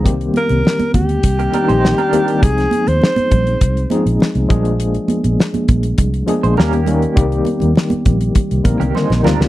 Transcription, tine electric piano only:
X:1
M:4/4
L:1/8
Q:1/4=101
K:Cm
V:1 name="Tine electric piano"
[E,G,B,CG]3 z2 [E,G,B,CE] z [E,G,B,CG] | [F,A,CEGA]3 z2 [F,A,CEA] z [F,A,B,DA]- | [F,A,B,DA]2 z3 [F,A,B,DA] [E,G,B,_DG] [E,G,B,DB] | [E,G,B,CG]3 z2 [D,E,G,B,CB] z [E,G,B,CF] |]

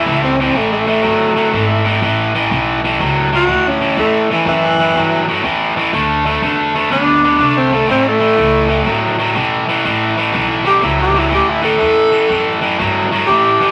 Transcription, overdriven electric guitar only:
X:1
M:4/4
L:1/8
Q:"Swing" 1/4=122
K:Amix
V:1 name="Overdriven electric guitar" clef=bass
[A,,E,] [A,,E,] [A,,E,] [A,,E,] [A,,F,] [A,,F,] [A,,E,] [A,,E,] | [A,,E,] [A,,E,] [A,,E,] [A,,E,] [A,,F,] [A,,F,] [A,,E,] [A,,E,] | [A,,E,] [A,,E,] [A,,E,] [A,,E,] [A,,F,] [A,,F,] [A,,E,] [A,,E,] | [D,A,] [D,A,] [D,A,] [D,A,] [D,B,] [D,B,] [D,A,] [D,A,] |
[A,,E,] [A,,E,] [A,,E,] [A,,E,] [A,,F,] [A,,F,] [A,,E,] [A,,E,] | [A,,E,] [A,,E,] [A,,E,] [A,,E,] [A,,F,] [A,,F,] [A,,E,] [A,,E,] | [A,,E,] [A,,E,] [A,,E,] [A,,E,] [A,,F,] [A,,F,] [A,,E,] [A,,E,] |]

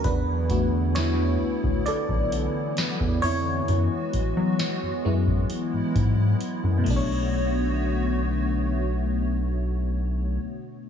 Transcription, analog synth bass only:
X:1
M:4/4
L:1/16
Q:1/4=66
K:Bdor
V:1 name="Analog synth bass" clef=bass
E,,6 D,, D,, B,,, B,,,2 z2 E,, ^E,,2 | F,, z F, F, z F,, F,,2 z G,, G,,2 z F,, B,,,2- | B,,,16 |]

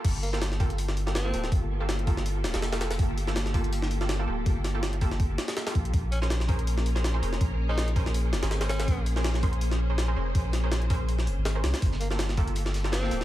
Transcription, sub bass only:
X:1
M:4/4
L:1/16
Q:"Swing 16ths" 1/4=163
K:Gm
V:1 name="Sub bass" clef=bass
G,,,12- G,,,2 D,,,2 | G,,,8- G,,,2 D,,, F,,,4- F,,, | G,,,12- G,,,2 D,,,2 | G,,,8- G,,,2 z4 B,,,2 |
B,,,12- B,,,2 F,,,2 | B,,,8- B,,,2 F,,, _A,,,4- A,,, | B,,,12- B,,,2 F,,,2 | B,,,8- B,,,2 F,,, _A,,,3 C,, z |
G,,,12- G,,,2 D,,,2 |]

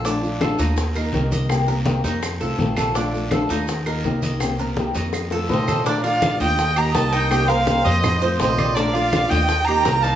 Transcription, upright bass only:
X:1
M:4/4
L:1/8
Q:1/4=165
K:Bb
V:1 name="Upright bass" clef=bass
B,,,3 E,,3 C,,2- | C,,3 F,,2 C,, B,,,2- | B,,,3 E,,3 C,,2- | C,,3 F,,3 B,,,2- |
B,,,3 E,,3 C,,2- | C,,3 F,,3 B,,,2- | B,,,3 E,,3 C,,2 |]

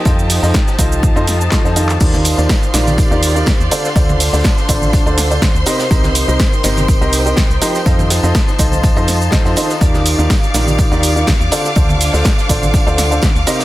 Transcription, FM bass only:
X:1
M:4/4
L:1/16
Q:"Swing 16ths" 1/4=123
K:Dphr
V:1 name="FM bass" clef=bass
F,,3 F,, z2 C,,3 F,,3 z F,,3 | E,,3 E,, z2 B,,,3 E,,3 z E,, z2 | D,,3 D,, z2 A,,,3 D,,3 z D,, z2 | C,,3 C,, z2 G,,,3 C,,3 z C,, z2 |
F,,3 F,, z2 C,,3 F,,3 z F,, z2 | E,,3 E,, z2 B,,,3 E,,3 z E,, z2 | D,,3 D,, z2 A,,,3 D,,3 z D,, z2 |]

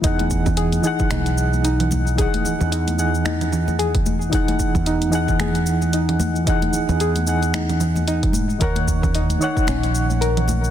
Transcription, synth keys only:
X:1
M:4/4
L:1/8
Q:"Swing 16ths" 1/4=112
K:Elyd
V:1 name="Synth keys"
[E,DGf]3 [E,DGf]4- [E,DGf] | [E,DGf]3 [E,DGf] z4 | [E,DGf]3 [E,DGf]4- [E,DGf] | [E,DGf]3 [E,DGf] z4 |
[D,Dcf]3 [D,Dcf]4- [D,Dcf] |]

